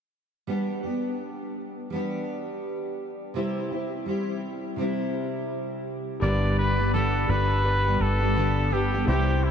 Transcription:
0.47 0.84 G3 medium
0.47 0.84 B3 medium
0.47 0.83 D4 medium
0.47 0.82 G4 medium
0.83 1.91 B3 soft
0.83 1.92 D4 soft
0.83 1.95 G4 soft
1.90 3.35 G3 medium
1.90 3.35 B3 medium
1.90 3.36 D4 medium
1.96 3.36 G4 medium
3.34 3.71 C3 medium
3.34 3.71 G3 medium
3.34 3.71 C4 medium
3.34 3.71 E4 medium
3.34 3.69 G4 medium
3.71 4.06 C4 soft
3.71 4.07 E4 soft
3.71 4.07 G4 soft
4.06 4.78 G3 soft
4.06 4.78 C4 soft
4.06 4.79 E4 medium
4.06 4.82 G4 soft
4.76 6.21 C3 medium
4.76 6.22 G3 medium
4.76 6.22 C4 medium
4.81 6.23 E4 medium
4.81 6.24 G4 medium
6.20 7.25 G1 medium
6.20 6.77 G2 medium
6.20 6.77 D3 medium
6.20 7.14 G3 medium
6.20 6.77 G3 medium
6.20 6.78 B3 medium
6.20 7.14 D4 medium
6.20 6.78 D4 medium
6.20 6.76 G4 medium
6.20 6.29 A#4 medium
6.20 6.55 D5 loud
6.29 7.18 B4 medium
6.59 6.91 B4 loud
6.77 6.92 G3 soft
6.77 6.93 B3 soft
6.77 6.94 D4 soft
6.77 6.93 G4 soft
6.93 7.29 G2 medium
6.93 7.29 D3 medium
6.93 7.27 G3 medium
6.93 7.28 B3 medium
6.93 7.29 D4 medium
6.93 7.30 G4 medium
6.93 7.31 A4 loud
7.27 7.96 G1 loud
7.27 7.59 G3 medium
7.27 7.84 G3 medium
7.27 7.84 B3 medium
7.27 7.60 D4 medium
7.27 7.85 D4 medium
7.27 7.60 B4 medium
7.27 8.03 B4 loud
7.31 7.83 G4 medium
7.64 8.87 G3 medium
7.64 8.87 D4 medium
7.64 8.88 B4 medium
7.84 8.21 G3 soft
7.84 8.20 B3 soft
7.84 8.19 D4 soft
7.84 8.18 G4 medium
8.00 9.03 G1 medium
8.00 8.75 A4 loud
8.19 8.35 G3 soft
8.19 8.35 B3 soft
8.19 8.35 D4 soft
8.19 8.36 G4 soft
8.35 8.71 G2 medium
8.35 8.71 D3 medium
8.35 8.69 G3 medium
8.35 8.71 B3 medium
8.35 8.71 D4 medium
8.35 8.72 G4 medium
8.70 8.91 G3 medium
8.70 8.91 B3 medium
8.70 8.92 D4 medium
8.70 9.08 G4 medium
8.70 8.90 G4 medium
8.91 9.07 G3 soft
8.91 9.08 B3 soft
8.91 9.08 D4 soft
8.91 9.07 G4 medium
9.06 9.51 C2 loud
9.06 9.51 C3 medium
9.06 9.51 G3 medium
9.06 9.51 C4 medium
9.06 9.51 E4 medium
9.06 9.45 G4 medium
9.06 9.51 C5 medium
9.10 9.51 G4 medium
9.44 9.51 E4 medium

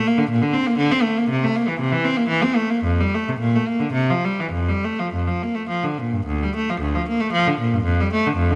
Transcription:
0.07 0.19 A#3 medium
0.18 0.30 D3 medium
0.30 0.42 A#2 medium
0.42 0.55 D3 medium
0.53 0.67 C4 medium
0.66 0.80 A#3 medium
0.78 0.91 D3 medium
0.91 1.04 C4 medium
1.02 1.16 A3 medium
1.17 1.30 A#3 medium
1.30 1.42 C3 medium
1.44 1.56 A3 medium
1.55 1.68 A#3 medium
1.68 1.80 E3 soft
1.80 1.93 C3 medium
1.92 2.05 E3 medium
2.04 2.18 C4 medium
2.17 2.30 A#3 medium
2.29 2.43 E3 medium
2.43 2.57 C4 medium
2.56 2.71 A3 soft
2.70 2.85 A#3 soft
2.84 2.99 F2 medium
3.00 3.13 G3 soft
3.15 3.27 A3 soft
3.28 3.40 C3 soft
3.40 3.52 A#2 medium
3.55 3.67 A3 soft
3.68 3.80 A#3 soft
3.80 3.93 D3 soft
3.93 4.06 C3 medium
4.10 4.23 F3 soft
4.25 4.37 G3 soft
4.40 4.53 E3 soft
4.52 4.66 F2 soft
4.69 4.82 G3 soft
4.84 4.97 A3 soft
4.99 5.12 F3 soft
5.14 5.26 F2 soft
5.27 5.40 F3 soft
5.43 5.55 A#3 soft
5.55 5.68 A3 soft
5.69 5.82 F3 soft
5.83 5.97 D3 soft
5.98 6.12 A#2 soft
6.13 6.27 G2 soft
6.26 6.40 D2 medium
6.43 6.56 G3 medium
6.56 6.69 A3 medium
6.70 6.82 F3 soft
6.81 6.94 D2 soft
6.95 7.07 F3 soft
7.08 7.21 A#3 soft
7.20 7.33 A3 medium
7.33 7.46 F3 medium
7.47 7.60 D3 medium
7.60 7.72 A#2 soft
7.73 7.86 G2 soft
7.83 7.97 F2 medium
8.00 8.12 G3 soft
8.13 8.25 A3 medium
8.27 8.38 D3 soft
8.36 8.49 F2 medium
8.51 8.55 D3 medium

